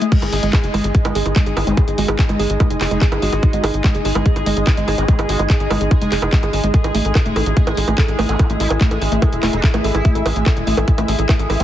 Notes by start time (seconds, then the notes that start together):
Already playing: G#3 E4 G#4 D#5
0.02 A3, closed hi-hat
0.12 G#3 D#4 G#4, kick, closed hi-hat, crash
0.22 G#1 G#4, closed hi-hat, high bongo
0.33 G#1 G#4, open hi-hat
0.43 G#1 G#3, closed hi-hat
0.51 G#4, kick, clap, closed hi-hat, high bongo
0.64 F#1 G#4, closed hi-hat
0.74 G#1 G#3, open hi-hat, high bongo
0.84 G#1 G#4, closed hi-hat
0.95 kick, closed hi-hat
1.05 G#1 G#3, closed hi-hat, high bongo
1.15 G#1 G#4, open hi-hat
1.26 G#1 G#4, closed hi-hat, high bongo
1.36 G#3, kick, clap, closed hi-hat
1.46 G#1 G#4, closed hi-hat
1.57 G#1 G#4, open hi-hat, high bongo
1.67 G#1 G#3 C4, closed hi-hat
1.77 C4 G#4, kick, closed hi-hat, high bongo
1.88 G#1 G#4, closed hi-hat
1.98 G#1 G#3 F#4, open hi-hat
2.08 G#1 G#4, closed hi-hat, high bongo
2.19 G#4, kick, clap, closed hi-hat
2.29 G#1 G#3, closed hi-hat, high bongo
2.39 G#1 G#4, open hi-hat
2.50 G#1 G#4, closed hi-hat
2.60 G#3, kick, closed hi-hat, high bongo
2.70 F#1 G#4, closed hi-hat
2.81 F#1 G#4, clap, open hi-hat, high bongo
2.91 F#1 G#3 D#4, closed hi-hat
3.02 G#4, kick, clap, closed hi-hat
3.12 G#1 G#4, closed hi-hat, high bongo
3.22 G#1 G#3 F#4, open hi-hat
3.33 G#1 G#4, closed hi-hat, high bongo
3.43 G#4, kick, closed hi-hat
3.53 G#1 G#3, closed hi-hat
3.64 G#1 G#4, open hi-hat, high bongo
3.74 G#1 G#4, closed hi-hat
3.84 G#3, kick, clap, closed hi-hat, high bongo
3.95 F#1 G#4, closed hi-hat
4.05 G#1 G#4, open hi-hat
4.15 G#1 G#3, closed hi-hat, high bongo
4.26 G#4, kick, closed hi-hat
4.36 G#1 G#4, closed hi-hat, high bongo
4.46 G#1 G#3, open hi-hat
4.57 G#1 G#4, closed hi-hat
4.67 G#4, kick, clap, closed hi-hat, high bongo
4.77 G#1 G#3, closed hi-hat
4.88 G#1 G#4, open hi-hat, high bongo
4.98 G#1 C4 G#4, closed hi-hat
5.08 G#3 C4, kick, closed hi-hat
5.19 G#1 G#4, closed hi-hat, high bongo
5.29 G#1 F#4 G#4, open hi-hat
5.39 G#1 G#3, closed hi-hat, high bongo
5.50 G#4, kick, clap, closed hi-hat
5.60 G#1 G#4, closed hi-hat
5.70 G#1 G#3, open hi-hat, high bongo
5.81 G#1 G#4, closed hi-hat
5.91 G#4, kick, closed hi-hat, high bongo
6.02 F#1 G#3, closed hi-hat
6.12 F#1 G#4, clap, open hi-hat
6.22 F#1 G#4, closed hi-hat, high bongo
6.33 G#3, kick, clap, closed hi-hat
6.43 G#1 G#4, closed hi-hat, high bongo
6.53 G#1 G#4, open hi-hat
6.64 G#1 G#3, closed hi-hat
6.74 E4 A4, kick, closed hi-hat
6.84 A1 A4, closed hi-hat, high bongo
6.95 A1 A3, open hi-hat
7.05 A1 A4, closed hi-hat
7.15 A4, kick, clap, closed hi-hat, high bongo
7.26 E1 A3, closed hi-hat
7.36 A1 A4, open hi-hat, high bongo
7.46 A1 A4, closed hi-hat
7.57 A3, kick, closed hi-hat
7.67 A1 A4, closed hi-hat, high bongo
7.72 E5
7.77 A1 A4, open hi-hat
7.88 A1 A3, closed hi-hat, high bongo
7.98 A4, kick, clap, closed hi-hat
8.08 A1 A4, closed hi-hat
8.19 A1 A3, open hi-hat, high bongo
8.29 A1 B3 A4, closed hi-hat
8.39 B3 A4, kick, closed hi-hat, high bongo
8.50 A1 A3, closed hi-hat
8.60 A1 E4 A4, open hi-hat
8.70 A1 A4, closed hi-hat, high bongo
8.81 A3, kick, clap, closed hi-hat
8.91 A1 A4, closed hi-hat, high bongo
9.02 A1 A4, open hi-hat
9.12 A1 A3, closed hi-hat
9.22 A4, kick, closed hi-hat, high bongo
9.33 E1 A4, closed hi-hat
9.43 E1 A3, clap, open hi-hat, high bongo
9.53 E1 D#4 A4, closed hi-hat
9.64 A4, kick, clap, closed hi-hat
9.74 A1 A3, closed hi-hat, high bongo
9.84 A1 E4 A4, open hi-hat
9.95 A1 A4, closed hi-hat, high bongo
10.05 A3, kick, closed hi-hat
10.15 A1 A4, closed hi-hat
10.26 A1 A4, open hi-hat, high bongo
10.36 A1 A3, closed hi-hat
10.46 A4, kick, clap, closed hi-hat, high bongo
10.57 E1 A4, closed hi-hat
10.67 A1 A3, open hi-hat
10.77 A1 A4, closed hi-hat, high bongo
10.88 A4, kick, closed hi-hat
10.98 A1 A3, closed hi-hat, high bongo
11.08 A1 A4, open hi-hat
11.19 A1 A4, closed hi-hat
11.29 A3, kick, clap, closed hi-hat, high bongo
11.39 A1 A4, closed hi-hat
11.50 A1 A4, open hi-hat, high bongo
11.60 A1 A3 B3, closed hi-hat